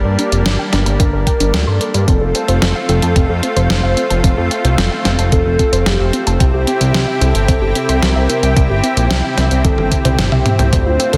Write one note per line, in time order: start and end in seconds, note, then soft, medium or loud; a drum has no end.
0.00 2.04 G3 medium
0.00 2.04 A#3 medium
0.00 2.04 D4 medium
0.05 0.17 G2 medium
0.05 0.12 A#4 medium
0.19 0.29 D4 medium
0.19 closed hi-hat medium
0.32 0.44 F1 medium
0.32 0.39 D5 medium
0.32 closed hi-hat medium
0.46 0.58 G1 loud
0.46 0.52 D4 medium
0.46 snare loud
0.46 closed hi-hat medium
0.59 0.66 G5 medium
0.72 0.85 G1 medium
0.72 0.83 D4 loud
0.72 snare medium
0.72 closed hi-hat medium
0.86 0.98 G1 medium
0.86 0.97 A#5 medium
0.86 closed hi-hat medium
1.00 1.12 G1 loud
1.00 1.12 D4 medium
1.00 1.55 A#4 medium
1.00 kick loud
1.00 closed hi-hat medium
1.13 1.25 G1 medium
1.13 1.20 A#4 medium
1.27 1.40 G5 medium
1.27 kick medium
1.27 closed hi-hat medium
1.40 1.52 G1 medium
1.40 1.51 D4 medium
1.40 closed hi-hat medium
1.54 1.66 D2 loud
1.54 1.99 A4 medium
1.54 1.67 A#4 medium
1.54 snare loud
1.54 closed hi-hat medium
1.67 1.79 G2 medium
1.67 1.78 C6 medium
1.81 1.94 A#4 medium
1.81 closed hi-hat medium
1.94 2.06 G2 medium
1.94 2.07 D5 medium
1.94 closed hi-hat medium
2.08 2.20 F1 loud
2.08 6.36 A3 medium
2.08 11.17 C4 medium
2.08 2.21 C4 medium
2.08 6.36 F4 medium
2.08 2.78 A4 loud
2.08 kick loud
2.08 closed hi-hat medium
2.21 2.33 F1 medium
2.21 2.28 A4 medium
2.35 2.46 C4 medium
2.35 closed hi-hat medium
2.48 2.60 F1 medium
2.48 2.55 C5 medium
2.48 closed hi-hat medium
2.62 2.74 F1 loud
2.62 2.68 C4 medium
2.62 snare loud
2.62 closed hi-hat medium
2.75 2.82 F5 medium
2.89 3.01 F1 medium
2.89 3.00 C4 loud
2.89 3.59 A4 loud
2.89 closed hi-hat medium
3.02 3.14 F2 medium
3.02 3.13 A5 medium
3.02 closed hi-hat medium
3.16 3.28 F1 loud
3.16 3.29 C4 medium
3.16 kick loud
3.16 closed hi-hat medium
3.29 3.42 F2 medium
3.29 3.36 A4 medium
3.43 3.54 C4 medium
3.43 closed hi-hat medium
3.56 3.68 F1 medium
3.56 3.63 C5 loud
3.56 closed hi-hat medium
3.70 3.82 F1 loud
3.70 3.76 C4 medium
3.70 4.40 C5 loud
3.70 snare loud
3.70 closed hi-hat medium
3.83 3.96 F1 medium
3.83 3.94 F5 medium
3.97 4.10 C4 medium
3.97 closed hi-hat medium
4.10 4.23 F1 medium
4.10 4.21 A5 medium
4.10 closed hi-hat medium
4.24 4.36 F1 loud
4.24 4.37 C4 medium
4.24 kick loud
4.24 closed hi-hat medium
4.37 4.50 F2 medium
4.37 4.44 A4 medium
4.51 4.62 C4 medium
4.51 closed hi-hat medium
4.64 4.77 C2 medium
4.64 4.71 C5 medium
4.64 closed hi-hat medium
4.78 4.90 F1 loud
4.78 4.85 C4 medium
4.78 snare loud
4.78 closed hi-hat medium
4.92 4.98 F5 medium
5.05 5.17 F1 medium
5.05 5.16 C4 loud
5.05 snare medium
5.05 closed hi-hat medium
5.19 5.31 F1 medium
5.19 5.29 A5 medium
5.19 closed hi-hat medium
5.32 5.44 F1 loud
5.32 5.45 C4 medium
5.32 5.88 A4 medium
5.32 kick loud
5.32 closed hi-hat medium
5.46 5.58 F1 medium
5.46 5.52 A4 medium
5.59 5.70 C4 medium
5.59 kick medium
5.59 closed hi-hat medium
5.73 5.85 F1 medium
5.73 5.79 C5 loud
5.73 closed hi-hat medium
5.86 5.98 F1 loud
5.86 5.93 C4 medium
5.86 6.31 G4 medium
5.86 snare loud
5.86 closed hi-hat medium
6.00 6.12 F1 medium
6.00 6.11 F5 medium
6.13 6.26 C4 medium
6.13 closed hi-hat medium
6.27 6.39 F1 medium
6.27 6.38 A5 medium
6.27 closed hi-hat medium
6.40 6.52 C2 loud
6.40 10.69 C3 medium
6.40 6.53 C4 medium
6.40 10.69 E4 medium
6.40 7.23 G4 loud
6.40 10.69 G4 medium
6.40 kick loud
6.40 closed hi-hat medium
6.54 6.66 C2 medium
6.54 6.60 G4 medium
6.67 6.78 C4 medium
6.67 closed hi-hat medium
6.81 6.93 C2 medium
6.81 6.87 C5 medium
6.81 closed hi-hat medium
6.94 7.06 C2 loud
6.94 7.01 C4 medium
6.94 snare loud
6.94 closed hi-hat medium
7.08 7.14 E5 medium
7.21 7.33 C2 medium
7.21 7.32 C4 loud
7.21 8.04 A4 loud
7.21 closed hi-hat medium
7.35 7.47 G1 medium
7.35 7.46 G5 medium
7.35 closed hi-hat medium
7.48 7.60 C2 loud
7.48 7.61 C4 medium
7.48 kick loud
7.48 closed hi-hat medium
7.62 7.74 G1 medium
7.62 7.68 G4 medium
7.75 7.86 C4 medium
7.75 closed hi-hat medium
7.89 8.01 C2 medium
7.89 7.95 C5 loud
7.89 closed hi-hat medium
8.02 8.14 C2 loud
8.02 8.09 C4 medium
8.02 8.73 A#4 loud
8.02 snare loud
8.02 closed hi-hat medium
8.16 8.28 C2 medium
8.16 8.27 E5 medium
8.29 8.42 C4 medium
8.29 closed hi-hat medium
8.43 8.55 C2 medium
8.43 8.54 G5 medium
8.43 closed hi-hat medium
8.56 8.69 C2 loud
8.56 8.69 C4 medium
8.56 kick loud
8.56 closed hi-hat medium
8.70 8.82 G1 medium
8.70 8.77 G4 medium
8.83 8.94 C4 medium
8.83 closed hi-hat medium
8.97 9.09 A#1 medium
8.97 9.03 C5 medium
8.97 closed hi-hat medium
9.10 9.23 C2 loud
9.10 9.17 C4 medium
9.10 snare loud
9.10 closed hi-hat loud
9.24 9.31 E5 medium
9.37 9.50 C2 medium
9.37 9.48 C4 loud
9.37 snare medium
9.37 closed hi-hat medium
9.51 9.63 C2 medium
9.51 9.62 G5 medium
9.51 closed hi-hat medium
9.65 9.77 C2 loud
9.65 9.77 C4 medium
9.65 10.20 A4 medium
9.65 kick loud
9.65 closed hi-hat medium
9.65 high tom medium
9.78 9.90 G1 medium
9.78 9.85 G4 medium
9.78 high tom medium
9.92 10.02 C4 medium
9.92 kick medium
9.92 closed hi-hat medium
10.05 10.17 C2 medium
10.05 10.12 C5 loud
10.05 closed hi-hat medium
10.05 mid tom medium
10.19 10.31 G1 loud
10.19 10.25 C4 medium
10.19 10.64 G4 medium
10.19 snare loud
10.19 closed hi-hat medium
10.19 mid tom medium
10.32 10.44 C2 medium
10.32 10.43 E5 medium
10.32 mid tom medium
10.46 10.58 C4 medium
10.46 closed hi-hat medium
10.46 mid tom medium
10.59 10.71 C2 medium
10.59 10.70 G5 medium
10.59 closed hi-hat medium
10.59 mid tom medium
10.73 10.85 D2 loud
10.73 11.17 D3 medium
10.73 11.17 A3 medium
10.73 10.86 C4 medium
10.73 11.17 F4 medium
10.73 11.17 C5 loud
10.73 kick loud
10.73 closed hi-hat loud
10.86 10.98 D2 medium
10.86 10.93 F4 medium
11.00 11.11 C4 medium
11.00 closed hi-hat medium
11.13 11.17 D2 medium
11.13 11.17 A4 medium
11.13 closed hi-hat medium